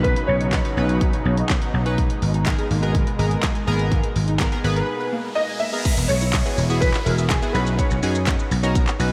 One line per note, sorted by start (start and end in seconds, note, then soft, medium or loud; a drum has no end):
0.00 0.12 B1 medium
0.00 5.81 B2 medium
0.00 1.96 C#3 medium
0.00 1.96 F#3 medium
0.00 0.38 C#4 medium
0.00 0.38 D#4 medium
0.00 5.81 D#4 loud
0.00 0.38 B4 loud
0.00 0.29 B4 loud
0.04 0.11 B3 medium
0.04 kick loud
0.04 closed hi-hat medium
0.16 closed hi-hat medium
0.27 0.60 B1 loud
0.27 1.21 C#5 loud
0.41 0.48 D#4 medium
0.41 closed hi-hat medium
0.53 0.60 B3 medium
0.53 0.59 C#4 medium
0.53 0.59 D#4 medium
0.53 0.59 B4 medium
0.53 kick loud
0.53 snare medium
0.53 clap loud
0.53 closed hi-hat medium
0.65 0.71 C#4 medium
0.65 0.71 D#4 medium
0.65 0.72 F#4 medium
0.65 0.72 B4 medium
0.65 closed hi-hat soft
0.77 1.09 B1 loud
0.77 0.84 B3 medium
0.77 1.28 C#4 medium
0.77 1.28 D#4 medium
0.77 1.28 B4 medium
0.89 0.96 B4 medium
0.89 closed hi-hat soft
1.01 kick loud
1.01 closed hi-hat medium
1.13 1.20 C#5 medium
1.13 closed hi-hat soft
1.25 1.41 B1 medium
1.25 1.32 B3 medium
1.37 closed hi-hat medium
1.50 1.57 B3 medium
1.50 kick loud
1.50 snare medium
1.50 clap loud
1.50 closed hi-hat medium
1.62 1.69 F#5 medium
1.62 closed hi-hat soft
1.74 2.06 B1 medium
1.74 1.81 B3 medium
1.86 1.98 C#4 medium
1.86 1.98 D#4 medium
1.86 1.98 B4 loud
1.86 closed hi-hat soft
1.98 5.81 G#3 medium
1.98 2.05 A#3 medium
1.98 kick loud
1.98 closed hi-hat medium
2.10 closed hi-hat medium
2.22 2.54 G#1 loud
2.22 open hi-hat medium
2.34 2.41 D#4 medium
2.34 closed hi-hat medium
2.46 2.53 A#3 medium
2.46 2.65 B3 medium
2.46 2.66 G#4 medium
2.46 2.66 A#4 loud
2.46 kick loud
2.46 snare medium
2.46 clap loud
2.46 clap medium
2.46 closed hi-hat medium
2.58 2.65 G#4 medium
2.58 closed hi-hat medium
2.71 3.02 G#1 loud
2.71 2.78 A#3 medium
2.71 open hi-hat medium
2.82 3.02 B3 medium
2.82 3.02 G#4 medium
2.82 2.90 A#4 medium
2.82 3.02 A#4 loud
2.82 closed hi-hat soft
2.95 kick loud
2.95 closed hi-hat medium
3.07 3.14 B4 medium
3.07 closed hi-hat soft
3.19 3.35 G#1 loud
3.19 3.26 A#3 medium
3.19 3.44 B3 medium
3.19 3.45 G#4 medium
3.19 3.45 A#4 medium
3.19 open hi-hat medium
3.31 closed hi-hat medium
3.43 3.50 A#3 medium
3.43 kick loud
3.43 snare loud
3.43 clap loud
3.43 clap medium
3.43 closed hi-hat medium
3.55 3.62 G#5 medium
3.55 closed hi-hat soft
3.67 3.99 G#1 medium
3.67 3.74 A#3 medium
3.67 4.06 B3 loud
3.67 4.06 G#4 loud
3.67 4.06 A#4 loud
3.67 open hi-hat medium
3.79 closed hi-hat medium
3.92 3.98 A#3 medium
3.92 kick loud
3.92 closed hi-hat medium
3.92 riser medium
4.04 closed hi-hat medium
4.16 4.48 G#1 loud
4.16 open hi-hat medium
4.28 4.35 D#4 medium
4.28 closed hi-hat medium
4.40 4.47 A#3 medium
4.40 4.46 B3 loud
4.40 4.46 G#4 medium
4.40 4.47 A#4 loud
4.40 kick loud
4.40 snare medium
4.40 clap loud
4.40 clap medium
4.40 closed hi-hat medium
4.52 4.58 B3 loud
4.52 4.59 G#4 medium
4.52 4.58 G#4 medium
4.52 4.59 A#4 loud
4.52 closed hi-hat medium
4.64 4.80 G#1 loud
4.64 4.71 A#3 medium
4.64 5.15 B3 loud
4.64 5.15 G#4 loud
4.64 5.15 B4 loud
4.64 open hi-hat medium
4.76 4.83 A#4 medium
4.76 closed hi-hat soft
5.00 5.07 B4 medium
5.13 5.19 A#3 medium
5.35 5.44 A#3 medium
5.35 5.61 D#5 loud
5.49 5.56 G#5 medium
5.60 5.68 A#3 medium
5.60 6.10 E5 loud
5.73 5.85 B3 medium
5.73 5.85 G#4 medium
5.73 5.85 A#4 loud
5.85 5.92 G#3 loud
5.85 kick loud
5.85 closed hi-hat medium
5.85 crash loud
5.85 downlifter medium
5.85 shaker medium
5.97 6.05 E1 medium
5.97 6.04 B3 medium
5.97 shaker medium
6.08 6.41 B1 medium
6.08 6.16 G#3 medium
6.08 6.83 C#5 loud
6.08 open hi-hat medium
6.08 shaker medium
6.21 6.28 E4 medium
6.21 shaker medium
6.33 kick loud
6.33 snare medium
6.33 clap loud
6.33 clap medium
6.33 closed hi-hat medium
6.33 shaker medium
6.45 6.58 B3 medium
6.45 6.58 E4 medium
6.45 6.58 F#4 medium
6.45 6.58 G#4 medium
6.45 shaker medium
6.58 6.89 E1 medium
6.58 6.65 G#3 medium
6.58 open hi-hat medium
6.58 shaker medium
6.69 6.89 B3 medium
6.69 6.89 E4 medium
6.69 6.89 F#4 medium
6.69 6.89 G#4 loud
6.69 shaker medium
6.81 6.89 G#3 medium
6.81 7.06 B4 loud
6.81 kick loud
6.81 closed hi-hat medium
6.81 shaker medium
6.94 7.01 B4 medium
6.94 clap medium
6.94 shaker soft
7.05 7.38 E1 medium
7.05 7.13 G#3 medium
7.05 7.25 B3 medium
7.05 7.25 E4 medium
7.05 7.25 F#4 medium
7.05 7.25 G#4 medium
7.05 7.30 A#4 medium
7.05 open hi-hat medium
7.05 shaker medium
7.18 7.25 E5 medium
7.18 shaker medium
7.29 7.37 G#3 medium
7.29 7.55 G#4 medium
7.29 kick loud
7.29 snare loud
7.29 clap loud
7.29 clap medium
7.29 closed hi-hat medium
7.29 shaker medium
7.42 7.54 B3 medium
7.42 7.54 E4 medium
7.42 7.53 F#4 medium
7.42 7.55 G#4 loud
7.42 7.49 F#5 medium
7.42 shaker soft
7.53 7.78 B1 loud
7.53 7.62 B3 medium
7.53 7.93 C#4 medium
7.53 7.93 D#4 medium
7.53 7.93 F#4 medium
7.53 7.79 B4 medium
7.53 7.93 B4 loud
7.53 open hi-hat medium
7.53 shaker soft
7.67 shaker medium
7.77 7.86 B3 medium
7.77 8.47 C#5 medium
7.77 kick loud
7.77 closed hi-hat medium
7.77 shaker medium
7.91 7.99 B1 medium
7.91 7.98 C#4 medium
7.91 shaker medium
8.03 8.35 F#2 medium
8.03 8.10 B3 medium
8.03 8.16 C#4 medium
8.03 8.16 D#4 medium
8.03 8.16 F#4 medium
8.03 8.16 G#4 loud
8.03 open hi-hat medium
8.03 shaker medium
8.15 8.22 D#4 medium
8.15 shaker medium
8.27 8.34 B3 medium
8.27 8.46 C#4 medium
8.27 8.46 D#4 medium
8.27 8.46 F#4 medium
8.27 8.46 B4 medium
8.27 kick loud
8.27 snare medium
8.27 clap loud
8.27 clap medium
8.27 closed hi-hat medium
8.27 shaker medium
8.39 shaker medium
8.51 8.83 B1 medium
8.51 8.58 B3 medium
8.51 open hi-hat medium
8.51 shaker medium
8.63 8.82 C#4 medium
8.63 8.82 D#4 medium
8.63 8.83 F#4 medium
8.63 8.83 A#4 loud
8.63 shaker medium
8.75 8.82 B3 medium
8.75 kick loud
8.75 closed hi-hat medium
8.75 shaker medium
8.88 8.95 C#5 medium
8.88 clap medium
8.88 shaker soft
8.99 9.12 B1 medium
8.99 9.07 B3 medium
8.99 9.12 C#4 medium
8.99 9.12 D#4 medium
8.99 9.12 F#4 medium
8.99 9.12 B4 loud
8.99 open hi-hat medium
8.99 shaker medium